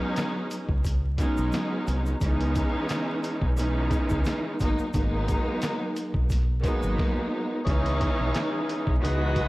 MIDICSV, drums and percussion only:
0, 0, Header, 1, 2, 480
1, 0, Start_track
1, 0, Tempo, 681818
1, 1557, Time_signature, 4, 2, 24, 8
1, 6675, End_track
2, 0, Start_track
2, 0, Title_t, "Drums"
2, 115, Note_on_c, 9, 42, 96
2, 116, Note_on_c, 9, 82, 69
2, 124, Note_on_c, 9, 38, 121
2, 132, Note_on_c, 9, 40, 95
2, 185, Note_off_c, 9, 42, 0
2, 187, Note_off_c, 9, 82, 0
2, 195, Note_off_c, 9, 38, 0
2, 203, Note_off_c, 9, 40, 0
2, 359, Note_on_c, 9, 82, 56
2, 360, Note_on_c, 9, 42, 74
2, 430, Note_off_c, 9, 42, 0
2, 430, Note_off_c, 9, 82, 0
2, 484, Note_on_c, 9, 36, 94
2, 554, Note_off_c, 9, 36, 0
2, 595, Note_on_c, 9, 82, 72
2, 596, Note_on_c, 9, 36, 88
2, 609, Note_on_c, 9, 42, 93
2, 665, Note_off_c, 9, 82, 0
2, 666, Note_off_c, 9, 36, 0
2, 679, Note_off_c, 9, 42, 0
2, 831, Note_on_c, 9, 36, 93
2, 831, Note_on_c, 9, 42, 77
2, 841, Note_on_c, 9, 82, 50
2, 902, Note_off_c, 9, 36, 0
2, 902, Note_off_c, 9, 42, 0
2, 911, Note_off_c, 9, 82, 0
2, 965, Note_on_c, 9, 82, 57
2, 1035, Note_off_c, 9, 82, 0
2, 1071, Note_on_c, 9, 82, 71
2, 1083, Note_on_c, 9, 38, 100
2, 1083, Note_on_c, 9, 42, 86
2, 1091, Note_on_c, 9, 40, 84
2, 1142, Note_off_c, 9, 82, 0
2, 1153, Note_off_c, 9, 38, 0
2, 1153, Note_off_c, 9, 42, 0
2, 1161, Note_off_c, 9, 40, 0
2, 1318, Note_on_c, 9, 82, 55
2, 1324, Note_on_c, 9, 42, 72
2, 1388, Note_off_c, 9, 82, 0
2, 1394, Note_off_c, 9, 42, 0
2, 1451, Note_on_c, 9, 82, 57
2, 1521, Note_off_c, 9, 82, 0
2, 1555, Note_on_c, 9, 82, 66
2, 1558, Note_on_c, 9, 36, 110
2, 1559, Note_on_c, 9, 42, 81
2, 1626, Note_off_c, 9, 82, 0
2, 1629, Note_off_c, 9, 36, 0
2, 1630, Note_off_c, 9, 42, 0
2, 1694, Note_on_c, 9, 42, 58
2, 1764, Note_off_c, 9, 42, 0
2, 1800, Note_on_c, 9, 42, 71
2, 1800, Note_on_c, 9, 82, 53
2, 1802, Note_on_c, 9, 36, 94
2, 1870, Note_off_c, 9, 42, 0
2, 1870, Note_off_c, 9, 82, 0
2, 1873, Note_off_c, 9, 36, 0
2, 2035, Note_on_c, 9, 82, 70
2, 2036, Note_on_c, 9, 42, 96
2, 2045, Note_on_c, 9, 38, 117
2, 2054, Note_on_c, 9, 40, 94
2, 2106, Note_off_c, 9, 42, 0
2, 2106, Note_off_c, 9, 82, 0
2, 2116, Note_off_c, 9, 38, 0
2, 2124, Note_off_c, 9, 40, 0
2, 2278, Note_on_c, 9, 82, 55
2, 2280, Note_on_c, 9, 42, 71
2, 2348, Note_off_c, 9, 82, 0
2, 2351, Note_off_c, 9, 42, 0
2, 2404, Note_on_c, 9, 36, 97
2, 2474, Note_off_c, 9, 36, 0
2, 2514, Note_on_c, 9, 82, 72
2, 2530, Note_on_c, 9, 42, 94
2, 2584, Note_off_c, 9, 82, 0
2, 2600, Note_off_c, 9, 42, 0
2, 2751, Note_on_c, 9, 36, 94
2, 2751, Note_on_c, 9, 42, 75
2, 2760, Note_on_c, 9, 82, 52
2, 2822, Note_off_c, 9, 36, 0
2, 2822, Note_off_c, 9, 42, 0
2, 2830, Note_off_c, 9, 82, 0
2, 2884, Note_on_c, 9, 82, 57
2, 2895, Note_on_c, 9, 36, 89
2, 2954, Note_off_c, 9, 82, 0
2, 2966, Note_off_c, 9, 36, 0
2, 2990, Note_on_c, 9, 82, 67
2, 3003, Note_on_c, 9, 38, 101
2, 3003, Note_on_c, 9, 42, 90
2, 3011, Note_on_c, 9, 40, 82
2, 3061, Note_off_c, 9, 82, 0
2, 3073, Note_off_c, 9, 38, 0
2, 3073, Note_off_c, 9, 42, 0
2, 3081, Note_off_c, 9, 40, 0
2, 3238, Note_on_c, 9, 82, 54
2, 3242, Note_on_c, 9, 36, 102
2, 3244, Note_on_c, 9, 42, 74
2, 3308, Note_off_c, 9, 82, 0
2, 3312, Note_off_c, 9, 36, 0
2, 3315, Note_off_c, 9, 42, 0
2, 3370, Note_on_c, 9, 82, 54
2, 3440, Note_off_c, 9, 82, 0
2, 3474, Note_on_c, 9, 82, 63
2, 3478, Note_on_c, 9, 36, 113
2, 3479, Note_on_c, 9, 42, 84
2, 3545, Note_off_c, 9, 82, 0
2, 3548, Note_off_c, 9, 36, 0
2, 3550, Note_off_c, 9, 42, 0
2, 3719, Note_on_c, 9, 42, 71
2, 3719, Note_on_c, 9, 82, 52
2, 3722, Note_on_c, 9, 36, 91
2, 3789, Note_off_c, 9, 42, 0
2, 3790, Note_off_c, 9, 82, 0
2, 3792, Note_off_c, 9, 36, 0
2, 3955, Note_on_c, 9, 42, 95
2, 3956, Note_on_c, 9, 82, 69
2, 3964, Note_on_c, 9, 38, 122
2, 3972, Note_on_c, 9, 40, 93
2, 4025, Note_off_c, 9, 42, 0
2, 4026, Note_off_c, 9, 82, 0
2, 4034, Note_off_c, 9, 38, 0
2, 4043, Note_off_c, 9, 40, 0
2, 4198, Note_on_c, 9, 82, 58
2, 4199, Note_on_c, 9, 42, 73
2, 4268, Note_off_c, 9, 82, 0
2, 4270, Note_off_c, 9, 42, 0
2, 4324, Note_on_c, 9, 36, 98
2, 4394, Note_off_c, 9, 36, 0
2, 4434, Note_on_c, 9, 82, 72
2, 4436, Note_on_c, 9, 36, 87
2, 4443, Note_on_c, 9, 38, 38
2, 4449, Note_on_c, 9, 42, 92
2, 4504, Note_off_c, 9, 82, 0
2, 4506, Note_off_c, 9, 36, 0
2, 4514, Note_off_c, 9, 38, 0
2, 4520, Note_off_c, 9, 42, 0
2, 4671, Note_on_c, 9, 36, 95
2, 4671, Note_on_c, 9, 42, 78
2, 4680, Note_on_c, 9, 82, 52
2, 4742, Note_off_c, 9, 36, 0
2, 4742, Note_off_c, 9, 42, 0
2, 4750, Note_off_c, 9, 82, 0
2, 4804, Note_on_c, 9, 82, 59
2, 4875, Note_off_c, 9, 82, 0
2, 4916, Note_on_c, 9, 36, 112
2, 4922, Note_on_c, 9, 38, 93
2, 4987, Note_off_c, 9, 36, 0
2, 4993, Note_off_c, 9, 38, 0
2, 5398, Note_on_c, 9, 36, 116
2, 5399, Note_on_c, 9, 42, 83
2, 5468, Note_off_c, 9, 36, 0
2, 5469, Note_off_c, 9, 42, 0
2, 5533, Note_on_c, 9, 42, 61
2, 5603, Note_off_c, 9, 42, 0
2, 5639, Note_on_c, 9, 42, 75
2, 5642, Note_on_c, 9, 36, 97
2, 5709, Note_off_c, 9, 42, 0
2, 5712, Note_off_c, 9, 36, 0
2, 5875, Note_on_c, 9, 42, 94
2, 5884, Note_on_c, 9, 38, 119
2, 5892, Note_on_c, 9, 40, 98
2, 5945, Note_off_c, 9, 42, 0
2, 5955, Note_off_c, 9, 38, 0
2, 5963, Note_off_c, 9, 40, 0
2, 6120, Note_on_c, 9, 42, 73
2, 6190, Note_off_c, 9, 42, 0
2, 6244, Note_on_c, 9, 36, 98
2, 6314, Note_off_c, 9, 36, 0
2, 6368, Note_on_c, 9, 42, 96
2, 6439, Note_off_c, 9, 42, 0
2, 6590, Note_on_c, 9, 42, 76
2, 6591, Note_on_c, 9, 36, 98
2, 6660, Note_off_c, 9, 42, 0
2, 6661, Note_off_c, 9, 36, 0
2, 6675, End_track
0, 0, End_of_file